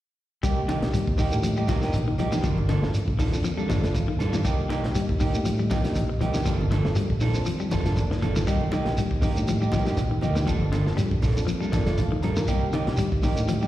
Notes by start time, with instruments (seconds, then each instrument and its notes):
0.43 fingered electric bass C2, clean electric guitar G3 A#3 G4, muted clean electric guitar stroke, kick, closed hi-hat, shekere
0.68 clean electric guitar D#3 A#3 D#4 G4, closed hi-hat, high conga, shekere
0.82 fingered electric bass A#1, reed electric piano A#3 D4 D#4 G4, snare, closed hi-hat
0.94 clean electric guitar G3, closed hi-hat, high conga, shekere
1.07 fingered electric bass D#2, kick
1.18 clean electric guitar D#3 A#3 D#4 G4, kick, open hi-hat, low conga, shekere
1.32 fingered electric bass A2, reed electric piano A#3 D4 D#4 G4, closed hi-hat, shekere
1.43 clean electric guitar F3, closed hi-hat, high conga, shekere
1.57 clean electric guitar G3 D#4 G4, shekere
1.68 fingered electric bass C2, clean electric guitar F3 A#3 D#4 G4, kick, snare, closed hi-hat, high conga, shekere
1.81 reed electric piano A#3 D4 D#4 A#4, clean electric guitar D#4 G4, snare, closed hi-hat, high conga, shekere
1.93 fingered electric bass A#1, kick, closed hi-hat, high conga, shekere
2.08 clean electric guitar D#3
2.18 fingered electric bass C2, clean electric guitar F3 A#3 D#4 G4, closed hi-hat, low conga, shekere
2.32 clean electric guitar D#3, reed electric piano A#3 D4 D#4 G4, snare, closed hi-hat, high conga, shekere
2.44 fingered electric bass G1, clean electric guitar F3 A#3 D4, muted clean electric guitar stroke, kick, closed hi-hat, shekere
2.58 high conga
2.69 clean electric guitar D3 F3 A#3 D4 A4, snare, closed hi-hat, high conga, shekere
2.82 fingered electric bass F1, reed electric piano A#3 D4 F4 A4, snare
2.94 muted fingered electric bass stroke, closed hi-hat, high conga, shekere
3.08 fingered electric bass A#1, kick
3.19 clean electric guitar D#3 F3 A#3 D4 A4, kick, open hi-hat, high conga, low conga, shekere
3.32 fingered electric bass F2, reed electric piano A#3 D4 F4 A4, shekere
3.44 clean electric guitar F3, closed hi-hat, high conga, shekere
3.58 clean electric guitar G3 A#3 D4 A4, shekere
3.69 fingered electric bass G1, clean electric guitar F3 D4 A4, reed electric piano D5, muted clean electric guitar stroke, kick, snare, closed hi-hat, high conga, shekere
3.82 reed electric piano A#3 D4 F4 A4, snare, closed hi-hat, high conga, shekere
3.95 fingered electric bass F1, reed electric piano F5, kick, closed hi-hat, high conga, shekere
4.08 clean electric guitar D#3
4.19 fingered electric bass G2, clean electric guitar F3 A#3 D4 A4, reed electric piano A5, snare, closed hi-hat, low conga, shekere
4.32 clean electric guitar D#3, reed electric piano A#3 D4 F4 A4, snare, high conga, shekere
4.45 fingered electric bass C2, clean electric guitar A#3 D#4 G4, muted clean electric guitar stroke, kick, snare, closed hi-hat, shekere
4.69 clean electric guitar D#3 A#3 D#4 G4, snare, closed hi-hat, high conga, shekere
4.83 fingered electric bass A#1, reed electric piano A#3 D4 D#4 G4, snare, closed hi-hat
4.95 clean electric guitar G3, closed hi-hat, high conga, low conga, shekere
5.09 fingered electric bass D#2, kick
5.20 clean electric guitar D#3 A#3 D#4 G4, kick, open hi-hat, low conga, shekere
5.33 fingered electric bass A2, reed electric piano A#3 D4 D#4 G4, closed hi-hat, shekere
5.45 clean electric guitar F3, closed hi-hat, high conga, shekere
5.59 clean electric guitar G3, shekere
5.70 fingered electric bass C2, clean electric guitar F3 A#3 D#4 G4, kick, snare, closed hi-hat, high conga, shekere
5.83 reed electric piano A#3 D4 D#4 G4, clean electric guitar D#4, muted clean electric guitar stroke, snare, closed hi-hat, shekere
5.95 fingered electric bass A#1, kick, closed hi-hat, high conga, low conga, shekere
6.09 muted clean electric guitar stroke
6.20 fingered electric bass C2, clean electric guitar F3 A#3 D#4 G4, closed hi-hat, low conga, shekere
6.34 clean electric guitar D#3, reed electric piano A#3 D4 D#4 G4, snare, closed hi-hat, high conga, shekere
6.46 fingered electric bass G1, clean electric guitar F3 A#3 D4 A4, kick, closed hi-hat, shekere
6.61 high conga
6.71 clean electric guitar D3 F3 A#3 A4, muted clean electric guitar stroke, snare, closed hi-hat, high conga, shekere
6.84 fingered electric bass F1, reed electric piano A#3 D4 F4 A4, snare
6.95 clean electric guitar G3, closed hi-hat, high conga, shekere
7.10 fingered electric bass A#1, kick
7.21 clean electric guitar D#3 F3 A#3 D4 A4, open hi-hat, low conga, shekere
7.34 fingered electric bass F2, reed electric piano A#3 D4 F4 C5, shekere
7.46 clean electric guitar F3, closed hi-hat, high conga, shekere
7.60 clean electric guitar G3, shekere
7.71 fingered electric bass G1, clean electric guitar F3 A#3 D4 A4, reed electric piano A5, kick, snare, closed hi-hat, high conga, shekere
7.85 reed electric piano A#3 D4 F4 A4, clean electric guitar A#3 D4 A4, snare, closed hi-hat, high conga, shekere
7.97 fingered electric bass F1, reed electric piano D5, kick, closed hi-hat, high conga, shekere
8.11 clean electric guitar D#3, snare
8.21 fingered electric bass G1, clean electric guitar F3 A#3 D4 A4, closed hi-hat, low conga, shekere
8.34 clean electric guitar D#3, reed electric piano A#3 D4 F4 A4, snare, high conga, shekere
8.47 fingered electric bass C2, clean electric guitar G3 A#3 D#4 G4, kick, snare, closed hi-hat, shekere
8.61 high conga
8.71 clean electric guitar D#3 A#3 D#4 G4, closed hi-hat, high conga, shekere
8.85 fingered electric bass A#1, reed electric piano A#3 D4 D#4 G4, snare, closed hi-hat
8.97 clean electric guitar G3, closed hi-hat, high conga, shekere
9.11 fingered electric bass D#2, kick
9.21 clean electric guitar D#3 A#3 D#4 G4, kick, open hi-hat, high conga, low conga, shekere
9.35 fingered electric bass A2, reed electric piano A#3 D4 D#4 G4, closed hi-hat, shekere
9.47 clean electric guitar F3, closed hi-hat, high conga, shekere
9.61 clean electric guitar G3 D#4 G4, shekere
9.72 fingered electric bass C2, clean electric guitar F3 A#3 D#4 G4, kick, snare, closed hi-hat, high conga, shekere
9.85 reed electric piano A#3 D4 D#4 G4, clean electric guitar D#4 G4, snare, closed hi-hat, high conga, shekere
9.97 fingered electric bass A#1, kick, closed hi-hat, high conga, low conga, shekere
10.11 clean electric guitar D#3
10.21 fingered electric bass D2, clean electric guitar F3 A#3 D#4 G4, closed hi-hat, low conga, shekere
10.35 clean electric guitar D#3, reed electric piano A#3 D4 D#4 G4, snare, closed hi-hat, high conga, shekere
10.47 fingered electric bass G1, clean electric guitar F3 D4 A4, muted clean electric guitar stroke, kick, closed hi-hat, shekere
10.72 clean electric guitar D3 F3 A#3 D4 A4, closed hi-hat, high conga, shekere
10.86 fingered electric bass F1, reed electric piano A#3 D4 F4 A4, snare
10.97 clean electric guitar G3, closed hi-hat, high conga, low conga, shekere
11.11 fingered electric bass A#1, kick
11.22 clean electric guitar F3 A#3 D4 A4, kick, open hi-hat, low conga, shekere
11.36 fingered electric bass F2, reed electric piano A#3 D4 F4 A4, shekere
11.47 clean electric guitar F3, closed hi-hat, high conga, shekere
11.61 clean electric guitar G3 A#3 D4 A4, shekere
11.72 fingered electric bass G1, clean electric guitar F3 A#3 A4, reed electric piano D5, muted clean electric guitar stroke, kick, snare, closed hi-hat, high conga, shekere
11.85 reed electric piano A#3 D4 F4 A4, clean electric guitar A#3 D4 A4, snare, closed hi-hat, high conga, shekere
11.98 fingered electric bass F1, reed electric piano F5, kick, closed hi-hat, high conga, low conga, shekere
12.12 clean electric guitar D#3
12.23 fingered electric bass G2, clean electric guitar F3 A#3 D4 A4, reed electric piano A#5, muted clean electric guitar stroke, closed hi-hat, low conga, shekere
12.36 clean electric guitar D#3, reed electric piano A#3 D4 F4 A#4, snare, high conga, shekere
12.48 fingered electric bass C2, clean electric guitar G3 A#3 D#4 G4, kick, closed hi-hat, shekere
12.72 clean electric guitar D#3 A#3 D#4 G4, closed hi-hat, high conga, shekere
12.86 fingered electric bass A#1, reed electric piano A#3 D4 D#4 G4, snare, closed hi-hat
12.97 clean electric guitar G3, muted fingered electric bass stroke, closed hi-hat, high conga, shekere
13.12 fingered electric bass D#2, kick
13.23 clean electric guitar D#3 A#3 D#4 G4, kick, open hi-hat, high conga, low conga, shekere
13.36 fingered electric bass A2, reed electric piano A#3 D4 D#4 G4, closed hi-hat, shekere
13.48 clean electric guitar F3, closed hi-hat, high conga, shekere
13.61 clean electric guitar G3 D#4 G4, shekere